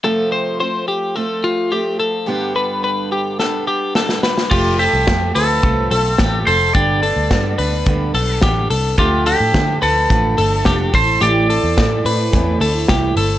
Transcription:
<<
  \new Staff \with { instrumentName = "Clean electric guitar" } { \time 4/4 \key f \lydian \tempo 4 = 107 a'8 c''8 c''8 g'8 a'8 f'8 g'8 a'8 | g'8 b'8 b'8 g'8 a'8 g'8 a'8 b'8 | g'8 a'4 b'4 a'8 g'8 a'8 | g'8 a'4 b'4 a'8 g'8 a'8 |
g'8 a'4 b'4 a'8 g'8 a'8 | g'8 a'4 b'4 a'8 g'8 a'8 | }
  \new Staff \with { instrumentName = "Lead electric guitar" } { \time 4/4 \key f \lydian r1 | r1 | f'8 g'4 a'2 c''8 | d''2. r4 |
f'8 g'4 a'2 c''8 | d''2. r4 | }
  \new Staff \with { instrumentName = "Steel-string acoustic guitar" } { \time 4/4 \key f \lydian <f, c f a c' f'>4 <f a c' f'>4 <f a c' f'>4 <f a c' f'>4 | <g, d g b d' g'>2 <g b d' g'>4 <g b d' g'>4 | <f, c f a c' f'>8 <f a c' f'>8 <f a c' f'>8 <f a c' f'>8 <f, c f a c' f'>8 <f a c' f'>8 <f a c' f'>8 <f a c' f'>8 | <g, d g b d'>8 <g b d'>8 <d g b d'>8 <g b d'>8 <g, d g b d'>8 <g b d'>8 <d g b d'>8 <g b d'>8 |
<d f a d'>8 <f a d'>8 <d f a d'>8 <f a d'>8 <d f a d'>8 <f a d'>8 <d f a d'>8 <a c' e'>8 | <a, e a c' e'>8 <a c' e'>8 <e a c' e'>8 <a c' e'>8 <a, e a c' e'>8 <a c' e'>8 <e a c' e'>8 <a c' e'>8 | }
  \new Staff \with { instrumentName = "Picked electric bass" } { \clef bass \time 4/4 \key f \lydian r1 | r1 | f,,8. c,16 f,8 d,8 c,8 b,,8 a,,8 f,,8 | g,,8. d,16 g,8 d,8 d,8 b,,8 a,,8 c,8 |
d,8. a,16 d8 d,8 a,,8 g,,8 f,,8 a,,8 | a,,8. e,16 a,8 a,8 e,8 d,8 c,8 g,,8 | }
  \new DrumStaff \with { instrumentName = "Drums" } \drummode { \time 4/4 r4 r4 r4 r4 | r4 r4 sn4 sn16 sn16 sn16 sn16 | <cymc bd>8 hho8 <hh bd sn>8 hho8 <hh bd>8 hho8 <hh bd sn>8 hho8 | <hh bd>8 hho8 <hh bd sn>8 hho8 <hh bd>8 hho8 <hh bd sn>8 hho8 |
<hh bd>8 hho8 <hh bd sn>8 hho8 <hh bd>8 hho8 <hh bd sn>8 <hho bd>8 | hh8 hho8 <hh bd sn>8 hho8 <hh bd>8 hho8 <hh bd sn>8 hho8 | }
>>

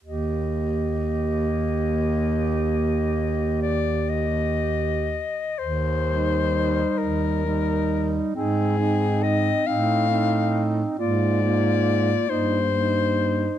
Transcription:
<<
  \new Staff \with { instrumentName = "Soprano saxophone" } { \time 6/8 \key ees \major \tempo 4. = 45 ees''2.~ | ees''4 d''8 ees''4. | c''4. bes'4. | aes'4 ees''8 f''4 r8 |
d''4. c''4. | }
  \new Staff \with { instrumentName = "Alto saxophone" } { \time 6/8 \key ees \major g'2.~ | g'2~ g'8 r8 | r8 ees'4. ees'4 | ees'8 ees'4 ees'8 ees'4 |
f'8 f'4 ees'8 ees'4 | }
  \new Staff \with { instrumentName = "Clarinet" } { \time 6/8 \key ees \major bes2.~ | bes2~ bes8 r8 | r8 g4. g4 | c'8 c'4 c'8 c'4 |
bes8 bes4 bes8 bes4 | }
  \new Staff \with { instrumentName = "Baritone saxophone" } { \clef bass \time 6/8 \key ees \major ees,2.~ | ees,2~ ees,8 r8 | ees,4. ees,4. | aes,4. a,4. |
aes,4. g,4. | }
>>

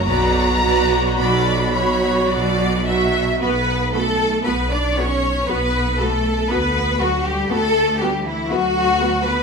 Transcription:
<<
  \new Staff \with { instrumentName = "Violin section" } { \time 3/4 \key b \minor \tempo 4 = 58 ais''4 b''4. r8 | b''8 b''8 b''8 b''8 b''8 b''8 | b''8 b''8 b''8 b''8 b''8 b''8 | }
  \new Staff \with { instrumentName = "Violin section" } { \time 3/4 \key b \minor <b' d''>8 <b' d''>8 d''8 cis''8 d''8 e''8 | b'8 a'8 b'16 d''16 cis''8 b'8 a'8 | b'8 fis'16 g'16 a'8 g'16 e'16 fis'8. b'16 | }
  \new Staff \with { instrumentName = "Viola section" } { \time 3/4 \key b \minor <fis fis'>8 <fis fis'>4 <fis fis'>4 <fis fis'>8 | <b fis'>8 <b fis'>8 <b fis'>8 <b fis'>8 <b fis'>8 <b fis'>8 | <b fis'>8 <b fis'>8 <b fis'>8 <b fis'>8 <b fis'>8 <b fis'>8 | }
  \new Staff \with { instrumentName = "Cello section" } { \time 3/4 \key b \minor b,4 b,4 b,4 | b8 a8 b16 d'16 cis'8 b8 a8 | b8 fis16 g16 a8 g16 e16 fis8. b16 | }
  \new Staff \with { instrumentName = "Double bass section" } { \clef bass \time 3/4 \key b \minor b,,4 b,,4 b,,4 | b,,4 b,,4 b,,4 | d,4 d,4 d,4 | }
>>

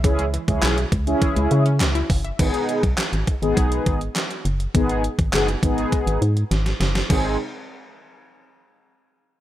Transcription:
<<
  \new Staff \with { instrumentName = "Analog polysynth" } { \time 4/4 \key gis \minor \tempo 4 = 102 <cis' e' gis'>16 r8 <cis' e' gis'>8 r8 <cis' e' gis'>4 r4 r16 | <b dis' gis'>8. r8. <dis' gis'>16 <b dis' gis'>4 r4 r16 | <b dis' gis'>8 r8 <b dis' gis'>16 r16 <b dis' gis'>4 r4. | <bis dis' gis'>8 r2. r8 | }
  \new Staff \with { instrumentName = "Synth pluck" } { \clef bass \time 4/4 \key gis \minor e16 gis16 e16 r16 e16 r8. e16 gis16 r16 cis'16 e16 e'16 e16 e''16 | r1 | r1 | r1 | }
  \new Staff \with { instrumentName = "FM bass" } { \clef bass \time 4/4 \key gis \minor cis,8. cis,16 b,,8 cis,8 r16 cis,16 cis8 cis,8 fis,,8 | gis,,16 r8 b,,16 r16 gis,,16 r16 gis,,16 b,,8 gis,,8 r8 fis,,8 | gis,,8. gis,,16 fis,,8 gis,,8 r16 gis,,16 gis,8 gis,,8 fis,,8 | gis,,8 r2. r8 | }
  \new DrumStaff \with { instrumentName = "Drums" } \drummode { \time 4/4 <hh bd>16 hh16 hh16 <hh bd>16 <hc hh sn>16 hh16 <hh bd>16 hh16 <hh bd>16 hh16 hh16 hh16 <hc hh sn>16 hh16 <hho bd>16 hh16 | <cymc hh bd>16 hh16 hh16 <hh bd>16 <hc hh sn>16 hh16 <hh bd>16 hh16 <hh bd>16 hh16 <hh bd>16 hh16 <hc hh sn>16 hh16 hh16 hh16 | <hh bd>16 hh16 hh16 <hh bd>16 <hc hh sn>16 hh16 <hh bd>16 hh16 <hh bd>16 hh16 hh16 hh16 <hh sn>16 <hh sn>16 <hh sn>16 <hh sn>16 | <cymc bd>4 r4 r4 r4 | }
>>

